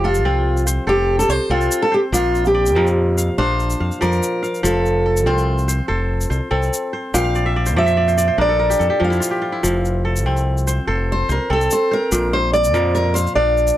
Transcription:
Already playing: F1 F3 F5
0.04 F4 A4
0.14 shaker
0.24 C2 C4 F4
0.57 shaker
0.67 C5, shaker
0.87 F1 G4 A4 C5
1.19 A4, shaker
1.29 C2 C5, shaker
1.50 C2 C4 F4 A4
1.61 shaker
1.71 shaker
1.82 A4
1.92 G4 C5
2.12 A#1 A#2 F4, shaker
2.35 shaker
2.45 G4, shaker
2.54 D5
2.66 shaker
2.75 F2 F3 A#4
2.87 shaker
3.17 F5, shaker
3.38 A#1 D4 C5 F5
3.60 shaker
3.70 shaker
3.80 F2 F5
3.92 shaker
4.01 F2 F3 A#4 D5, shaker
4.12 shaker
4.23 shaker
4.43 F5, shaker
4.55 shaker
4.63 F1 F3 A4, shaker
4.86 shaker
5.06 A4
5.17 shaker
5.26 C2 C4 F4 C5
5.38 shaker
5.58 shaker
5.68 C5, shaker
5.88 F1 A4 C5
6.21 shaker
6.30 C2 C5, shaker
6.51 C2 C4 A4
6.63 shaker
6.73 shaker
6.93 C5
7.14 A#1 A#2 F5 G5, shaker
7.24 F5
7.35 D5, shaker
7.46 E5
7.56 D5
7.66 C5, shaker
7.76 F2 F3 D5 E5
7.86 E5, shaker
7.97 D5
8.08 C5, shaker
8.18 D5, shaker
8.28 C5
8.38 A#1 D4 A#4 D5
8.49 A4
8.60 A#4
8.70 G4, shaker
8.79 F2 A4, shaker
8.90 G4
9.00 F2 F3 F4
9.04 F5
9.10 E4, shaker
9.20 F4, shaker
9.31 G4
9.42 F4
9.52 E4
9.63 F1 F3, shaker
9.85 shaker
10.05 A4
10.16 shaker
10.26 C2 C4
10.37 shaker
10.57 shaker
10.67 C5, shaker
10.87 F1 A4 C5
11.12 C5
11.29 C2 A#4 C5, shaker
11.50 C2 C4 A4
11.61 shaker
11.71 C5, shaker
11.91 A#4 C5
12.12 A#1 A#2, shaker
12.33 C5
12.53 D5, shaker
12.64 shaker
12.74 F2 F3 A#4, shaker
12.95 A#4, shaker
13.14 C5 F5, shaker
13.27 shaker
13.35 A#1 D4 D5 F5
13.57 shaker
13.67 shaker

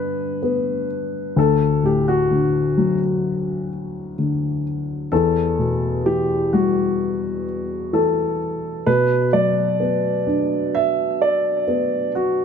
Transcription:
Already playing: G2 D3 B3 D4 B4
0.43 B3
1.36 D2 A4
1.83 A2 G4
2.08 F#4
2.31 D3
2.77 F#3
4.18 D3
5.12 E2 A4
5.59 B2
6.06 E3 G4
6.53 G3 F#4
7.93 E3 A4
8.86 B2 B4
9.33 F#3 D5
9.80 B3
10.27 D4
10.75 E5
11.22 D5
11.68 B3
12.15 F#4

